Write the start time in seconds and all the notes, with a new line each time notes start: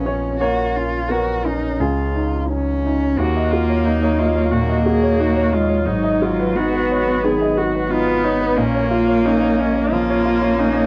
Already playing: A#1 F3 B3 C#4 F4 A#4 C#5 D#5
0.05 C#4 C#5
0.40 F#3 A#3 F#4 C#5
0.76 C#4 F4
1.09 B3 F#4 A#4
1.45 C#4 D#4
1.79 C#2 D#4 F4 G#4
2.15 D#4
2.50 C#4
2.85 D#4
3.18 D#2 F#3 A#3 D#4 F#4 C#5
3.36 D#5
3.51 F4 F#4
3.69 C#5
3.85 D#4
4.03 C#5
4.19 F4 D#5
4.35 C#5
4.52 A#2 A#3 F#4
4.69 D#5
4.86 F#4 G#4
5.03 C#5
5.19 D#4 F#4
5.36 C#5
5.53 G#3 F4 D#5
5.69 C#5
5.86 G#1 G#2 F#3 D#4 B4
6.04 D#5
6.22 F4 F#4
6.39 B4
6.56 B3 D#4 F#4
6.73 B4
6.91 C#5
7.07 B4
7.23 D#3 G#4
7.41 D#5
7.58 F#4
7.75 B4
7.89 B3 D#4 F4
8.07 B4
8.24 D#4 C#5
8.41 B4
8.56 A#1 A#2 A#3 C#4 F4 C#5
8.75 C#5
8.91 F4
9.08 C#5
9.25 C#4 D#4
9.43 C#5
9.59 C#4 D#5
9.76 C#5
9.91 F3 A#3 F4
10.09 C#5
10.25 F4
10.41 C#5
10.59 C#4 D#4
10.74 C#5